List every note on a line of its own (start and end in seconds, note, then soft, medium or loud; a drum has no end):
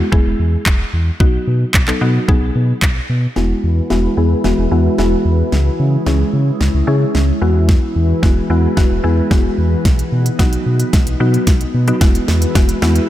0.12 0.21 E1 loud
0.12 1.03 G#3 medium
0.12 1.03 B3 medium
0.12 1.03 E4 medium
0.12 1.04 G#4 loud
0.12 kick medium
0.26 0.34 E1 loud
0.39 0.57 E2 loud
0.66 0.84 E1 medium
0.66 kick loud
0.66 clap loud
0.93 1.11 E2 medium
1.20 1.38 B1 medium
1.20 1.77 F#3 medium
1.20 1.77 B3 medium
1.20 1.77 D#4 medium
1.20 1.77 F#4 medium
1.20 kick loud
1.47 1.65 B2 loud
1.74 1.92 B1 loud
1.74 kick loud
1.74 clap loud
1.87 1.99 F#3 medium
1.87 1.99 B3 medium
1.87 1.99 D#4 medium
1.87 1.99 A4 medium
1.87 clap medium
2.01 2.19 B2 loud
2.01 2.24 F#3 medium
2.01 2.24 B3 medium
2.01 2.24 D#4 medium
2.01 2.24 F#4 medium
2.28 2.37 B1 loud
2.28 3.20 F#3 medium
2.28 3.20 B3 medium
2.28 3.20 D#4 medium
2.28 3.20 G#4 loud
2.28 kick medium
2.42 2.51 B1 loud
2.55 2.73 B2 loud
2.82 3.00 B1 loud
2.82 kick loud
2.82 clap loud
3.09 3.27 B2 medium
3.36 3.54 E1 loud
3.36 5.50 E3 medium
3.36 3.82 G#3 medium
3.36 3.82 B3 medium
3.36 9.81 E4 medium
3.36 3.82 E4 medium
3.36 5.50 F#4 medium
3.36 3.82 F#4 medium
3.36 5.50 G#4 medium
3.36 5.50 B4 medium
3.36 snare soft
3.64 3.81 E2 loud
3.90 4.08 E1 medium
3.90 4.13 G#3 medium
3.90 4.13 B3 medium
3.90 4.13 E4 medium
3.90 4.13 F#4 medium
3.90 snare medium
4.17 4.35 E2 loud
4.17 4.40 G#3 medium
4.17 4.40 B3 medium
4.17 4.40 E4 medium
4.17 4.40 G#4 medium
4.44 4.53 E1 loud
4.44 4.67 G#3 loud
4.44 4.67 B3 medium
4.44 4.67 E4 medium
4.44 4.67 F#4 loud
4.44 snare medium
4.58 4.67 E1 medium
4.71 4.89 E2 loud
4.71 4.94 G#3 medium
4.71 4.94 B3 medium
4.71 4.95 E4 medium
4.71 4.95 F#4 loud
4.98 5.16 E1 loud
4.98 5.53 G#3 loud
4.98 5.53 B3 medium
4.98 5.53 E4 medium
4.98 5.53 F#4 loud
4.98 snare medium
5.25 5.43 E2 loud
5.52 5.70 C#2 loud
5.52 7.40 G#3 medium
5.52 7.40 C#4 medium
5.52 snare medium
5.80 5.97 C#3 loud
6.06 6.24 C#2 loud
6.06 6.75 G#3 medium
6.06 6.75 C#4 medium
6.06 6.75 E4 medium
6.06 6.75 G#4 loud
6.06 snare medium
6.33 6.51 C#3 loud
6.61 6.69 C#2 loud
6.61 snare medium
6.74 6.83 C#2 loud
6.87 7.05 C#3 loud
6.87 7.40 G#3 loud
6.87 7.42 C#4 medium
6.87 7.41 E4 medium
6.87 7.42 G#4 loud
7.15 7.32 C#2 medium
7.15 snare medium
7.41 7.77 E2 loud
7.41 9.83 E3 medium
7.41 8.10 G#3 medium
7.41 8.10 B3 medium
7.41 8.10 E4 medium
7.41 8.10 F#4 loud
7.41 11.97 F#4 medium
7.41 9.83 G#4 medium
7.41 9.83 B4 medium
7.69 kick loud
7.69 snare medium
7.96 8.13 E2 medium
8.23 8.41 E1 loud
8.23 8.46 G#3 medium
8.23 8.46 B3 medium
8.23 8.46 E4 medium
8.23 8.46 F#4 medium
8.23 kick loud
8.23 snare medium
8.50 8.67 E2 loud
8.50 8.73 G#3 medium
8.50 8.73 B3 medium
8.50 8.73 E4 medium
8.50 8.73 F#4 medium
8.77 8.86 E1 loud
8.77 9.00 G#3 loud
8.77 9.00 B3 medium
8.77 9.00 E4 medium
8.77 9.00 F#4 loud
8.77 kick medium
8.77 snare medium
8.91 8.99 E1 loud
9.04 9.22 E2 loud
9.04 9.27 G#3 medium
9.04 9.27 B3 medium
9.04 9.27 E4 medium
9.04 9.27 G#4 loud
9.31 9.49 E1 medium
9.31 9.85 G#3 loud
9.31 9.85 B3 medium
9.31 9.85 E4 medium
9.31 9.85 F#4 loud
9.31 kick loud
9.31 snare medium
9.58 9.76 E2 medium
9.85 10.03 B1 medium
9.85 11.99 B3 medium
9.85 11.99 D#4 medium
9.85 kick loud
9.85 snare medium
9.85 closed hi-hat medium
9.99 closed hi-hat soft
10.12 10.30 B2 loud
10.26 closed hi-hat medium
10.39 10.57 B1 loud
10.39 11.08 F#3 medium
10.39 11.08 B3 medium
10.39 11.08 D#4 medium
10.39 11.08 F#4 loud
10.39 kick loud
10.39 snare medium
10.39 closed hi-hat medium
10.53 closed hi-hat medium
10.66 10.84 B2 loud
10.80 closed hi-hat medium
10.93 11.02 B1 loud
10.93 kick loud
10.93 snare medium
10.93 closed hi-hat medium
11.07 11.15 B1 loud
11.07 closed hi-hat medium
11.20 11.38 B2 loud
11.20 11.77 F#3 medium
11.20 11.77 B3 medium
11.20 11.77 D#4 medium
11.20 11.77 F#4 loud
11.34 closed hi-hat soft
11.47 11.65 B1 loud
11.47 kick loud
11.47 snare medium
11.47 closed hi-hat medium
11.61 closed hi-hat soft
11.74 11.92 B2 medium
11.88 11.99 F#3 medium
11.88 11.99 B3 medium
11.88 11.99 D#4 medium
11.88 11.99 F#4 medium
11.88 closed hi-hat soft
12.01 12.19 E1 loud
12.01 13.09 E3 medium
12.01 12.47 G#3 medium
12.01 12.47 B3 medium
12.01 12.47 E4 medium
12.01 13.09 E4 medium
12.01 12.47 F#4 medium
12.01 13.09 F#4 medium
12.01 13.09 G#4 medium
12.01 13.09 B4 medium
12.01 kick loud
12.01 snare medium
12.01 closed hi-hat medium
12.15 closed hi-hat medium
12.28 12.46 E2 loud
12.28 snare medium
12.42 closed hi-hat medium
12.55 12.73 E1 medium
12.55 12.78 G#3 medium
12.55 12.78 B3 medium
12.55 12.78 E4 medium
12.55 12.78 F#4 loud
12.55 kick loud
12.55 snare medium
12.55 closed hi-hat medium
12.69 closed hi-hat medium
12.82 13.00 E2 loud
12.82 13.05 G#3 medium
12.82 13.05 B3 medium
12.82 13.05 E4 medium
12.82 13.05 F#4 loud
12.82 snare medium
12.96 closed hi-hat medium